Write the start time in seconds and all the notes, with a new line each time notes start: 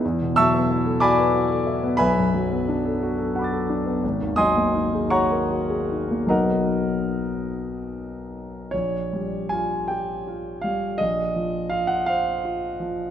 0.05 E2
0.22 B2
0.36 F#3 E5 A5 C#6 E6
0.54 B3
0.71 E4
0.86 A4
1.00 F#4 D5 G#5 B5 D6
1.18 B4
1.35 F#4
1.50 A4
1.67 E4
1.83 B3
1.97 B1 B4 E5 G#5 B5
2.17 F#2
2.34 F#3
2.51 B3
2.68 D4
2.85 A4
3.03 F#4
3.18 A4
3.35 F#4 F#5 B5
3.42 D6 A6
3.53 A4
3.69 D4
3.86 B3
4.04 G#1
4.22 D#2
4.36 F#3 D#5 G#5 C6 D#6
4.56 A#3
4.74 D#4
4.94 G#4
5.10 F#4 C#5 F#5 A#5 C#6
5.32 A#4
5.51 F#4
5.70 G#4
5.91 D#4
6.11 A#3
6.26 B1 F#3 B3 D#4 F#4 A#4 D#5 A#5
6.30 F#5
8.71 A#1 C#5
9.13 G3
9.49 F4 G#5
9.88 G4 G5
10.27 F4
10.61 G3 F5
10.98 A#1 D#5
11.36 F3
11.69 F4 F5
11.87 F#5
12.06 C5 F5
12.45 F4
12.80 F3